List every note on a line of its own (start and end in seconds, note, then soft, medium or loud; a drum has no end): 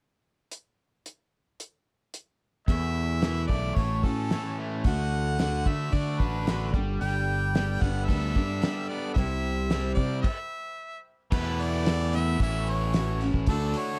0.51 closed hi-hat medium
1.06 closed hi-hat soft
1.60 closed hi-hat medium
2.14 closed hi-hat soft
2.68 3.46 E2 medium
2.68 3.22 E2 medium
2.68 3.22 B2 medium
2.68 3.23 E3 medium
2.68 3.23 A3 medium
2.68 3.23 B3 medium
2.68 3.23 E4 medium
2.68 3.45 E5 loud
2.68 kick medium
2.68 open hi-hat soft
3.22 3.50 E2 medium
3.22 3.50 B2 medium
3.22 3.50 E3 medium
3.22 3.50 A3 medium
3.22 3.50 B3 medium
3.22 3.49 E4 medium
3.22 snare loud
3.22 open hi-hat soft
3.47 3.75 B1 medium
3.47 3.78 B3 soft
3.47 3.77 E4 soft
3.47 3.77 D5 medium
3.47 kick medium
3.52 3.76 E3 soft
3.52 3.77 A3 soft
3.75 4.02 A1 medium
3.75 4.86 A2 medium
3.75 4.04 E3 soft
3.75 4.04 A3 soft
3.75 4.04 C#4 soft
3.75 4.06 C#5 medium
3.75 kick medium
3.75 open hi-hat soft
3.79 4.03 F#4 medium
4.04 4.29 A2 medium
4.04 4.31 A3 soft
4.04 4.31 C#4 soft
4.04 4.31 F#4 soft
4.04 4.58 A4 medium
4.04 kick medium
4.30 4.85 A2 medium
4.30 4.85 E3 medium
4.30 4.85 A3 medium
4.30 4.86 C#4 medium
4.30 4.86 F#4 medium
4.30 snare loud
4.30 open hi-hat soft
4.59 5.65 A3 medium
4.84 5.62 D2 medium
4.84 5.37 D3 medium
4.84 5.39 A3 medium
4.84 5.39 D4 medium
4.84 5.39 F#4 medium
4.84 5.70 F#5 loud
4.84 kick loud
4.84 open hi-hat soft
5.39 5.66 D3 medium
5.39 5.66 A3 medium
5.39 5.65 D4 medium
5.39 5.64 F#4 medium
5.39 snare loud
5.39 open hi-hat soft
5.65 5.92 D3 medium
5.65 5.93 A3 soft
5.65 5.93 D4 soft
5.65 5.93 F#4 soft
5.65 5.96 E5 medium
5.65 kick medium
5.93 6.20 D3 soft
5.93 6.19 D3 medium
5.93 6.21 A3 soft
5.93 6.20 D4 soft
5.93 6.19 F#4 medium
5.93 6.21 D5 medium
5.93 kick medium
5.93 open hi-hat soft
6.20 6.71 A1 medium
6.20 6.47 A3 soft
6.20 6.47 D4 soft
6.20 6.47 F#4 soft
6.20 6.74 B4 medium
6.20 kick medium
6.47 6.74 D3 medium
6.47 6.75 A3 medium
6.47 6.73 D4 medium
6.47 6.73 F#4 medium
6.47 snare loud
6.47 open hi-hat soft
6.74 7.00 G1 medium
6.74 7.54 G3 soft
6.74 7.55 B3 soft
6.74 7.55 D4 soft
6.74 7.55 A4 medium
6.74 kick medium
7.00 7.78 G1 medium
7.00 7.54 G3 medium
7.00 7.83 G5 loud
7.00 open hi-hat soft
7.55 7.82 G3 medium
7.55 7.83 B3 medium
7.55 7.83 D4 medium
7.55 7.82 A4 medium
7.55 snare loud
7.55 open hi-hat soft
7.81 8.08 G1 medium
7.81 8.89 B3 medium
7.81 8.09 D4 soft
7.81 8.09 A4 medium
7.81 8.06 F#5 medium
7.81 kick medium
7.81 snare soft
7.85 8.08 B3 soft
8.05 8.36 G3 medium
8.05 8.90 E5 loud
8.09 8.35 D2 medium
8.09 8.36 B3 medium
8.09 8.36 D4 medium
8.09 8.34 A4 medium
8.09 kick medium
8.09 open hi-hat soft
8.35 8.62 G2 medium
8.35 8.62 B3 soft
8.35 8.62 D4 soft
8.35 8.62 A4 medium
8.35 kick medium
8.62 9.16 G3 medium
8.62 9.17 B3 medium
8.62 9.17 D4 medium
8.62 9.17 A4 medium
8.62 snare loud
8.62 open hi-hat soft
8.89 9.17 B3 medium
8.89 9.13 D5 medium
9.14 9.94 C2 loud
9.14 9.70 C3 medium
9.14 9.70 G3 medium
9.14 9.71 C4 medium
9.14 9.71 E4 medium
9.14 9.93 E5 medium
9.14 kick loud
9.14 open hi-hat soft
9.18 9.71 G4 medium
9.70 9.98 C3 medium
9.70 9.98 G3 medium
9.70 9.98 C4 medium
9.70 9.98 E4 medium
9.70 9.96 G4 medium
9.70 snare loud
9.70 open hi-hat medium
9.94 10.23 C3 medium
9.94 10.25 G4 medium
9.94 10.21 D5 medium
9.94 kick medium
9.99 10.26 C4 soft
9.99 10.25 E4 soft
10.22 11.00 E5 medium
10.22 kick medium
10.22 crash medium
11.32 12.36 E2 loud
11.32 11.86 E2 medium
11.32 11.87 B2 medium
11.32 11.85 E3 medium
11.32 11.87 A3 medium
11.32 11.87 B3 medium
11.32 11.87 E4 medium
11.32 11.63 B4 medium
11.32 kick loud
11.32 crash medium
11.60 12.17 D5 loud
11.60 open hi-hat soft
11.86 12.14 E3 medium
11.86 12.14 A3 medium
11.86 12.13 B3 medium
11.86 12.13 E4 medium
11.86 snare loud
11.86 open hi-hat medium
12.13 12.40 E3 soft
12.13 12.41 A3 medium
12.13 12.41 B3 medium
12.13 12.41 E4 medium
12.13 12.42 E5 loud
12.13 open hi-hat medium
12.39 13.31 A1 medium
12.39 13.46 A2 medium
12.39 12.93 E3 medium
12.39 12.94 A3 soft
12.39 12.94 C#4 medium
12.39 13.48 E4 medium
12.39 12.95 F#4 medium
12.39 12.71 E5 loud
12.39 kick medium
12.39 open hi-hat medium
12.67 13.23 C#5 medium
12.67 open hi-hat soft
12.94 13.21 E3 medium
12.94 13.22 A3 medium
12.94 13.21 C#4 medium
12.94 13.21 F#4 medium
12.94 snare loud
12.94 open hi-hat medium
13.21 13.48 A3 soft
13.21 13.49 C#4 soft
13.21 13.49 F#4 soft
13.21 open hi-hat soft
13.34 13.47 A1 medium
13.34 kick medium
13.47 13.74 D2 loud
13.47 13.99 D3 medium
13.47 13.99 A3 medium
13.47 13.99 D4 medium
13.47 13.99 F#4 medium
13.47 13.79 A4 medium
13.47 kick medium
13.47 open hi-hat medium
13.74 13.99 C#5 loud
13.74 open hi-hat medium